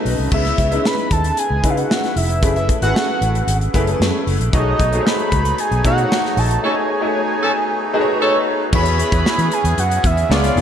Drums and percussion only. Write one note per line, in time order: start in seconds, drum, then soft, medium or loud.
0.06 open hi-hat medium
0.32 kick loud
0.32 crash medium
0.45 snare soft
0.45 closed hi-hat soft
0.58 kick medium
0.58 closed hi-hat medium
0.72 closed hi-hat medium
0.85 snare loud
0.98 closed hi-hat soft
1.11 kick medium
1.11 closed hi-hat medium
1.24 closed hi-hat medium
1.37 closed hi-hat medium
1.64 kick medium
1.64 closed hi-hat medium
1.77 closed hi-hat soft
1.91 snare loud
2.04 snare soft
2.04 closed hi-hat soft
2.17 open hi-hat medium
2.30 closed hi-hat medium
2.43 kick loud
2.43 closed hi-hat medium
2.56 closed hi-hat soft
2.69 kick medium
2.69 closed hi-hat medium
2.82 closed hi-hat medium
2.96 snare loud
3.22 closed hi-hat medium
3.35 closed hi-hat soft
3.48 closed hi-hat medium
3.61 closed hi-hat soft
3.74 kick medium
3.74 closed hi-hat medium
3.87 closed hi-hat soft
4.02 snare loud
4.27 open hi-hat medium
4.41 closed hi-hat soft
4.53 kick loud
4.53 closed hi-hat medium
4.80 kick medium
4.80 closed hi-hat medium
4.93 closed hi-hat medium
5.07 snare medium
5.19 closed hi-hat soft
5.32 kick medium
5.32 closed hi-hat medium
5.45 closed hi-hat medium
5.58 closed hi-hat medium
5.72 closed hi-hat soft
5.85 kick medium
5.85 closed hi-hat medium
5.98 closed hi-hat soft
6.12 snare loud
6.25 snare soft
6.37 open hi-hat medium
6.51 closed hi-hat medium
8.73 kick loud
8.73 crash medium
8.86 closed hi-hat medium
8.99 closed hi-hat medium
9.12 kick loud
9.12 closed hi-hat medium
9.26 snare loud
9.39 closed hi-hat soft
9.52 closed hi-hat medium
9.65 closed hi-hat medium
9.78 closed hi-hat medium
9.91 closed hi-hat medium
10.04 kick medium
10.04 closed hi-hat medium
10.17 closed hi-hat soft
10.32 snare loud
10.44 snare soft
10.44 closed hi-hat medium
10.57 open hi-hat medium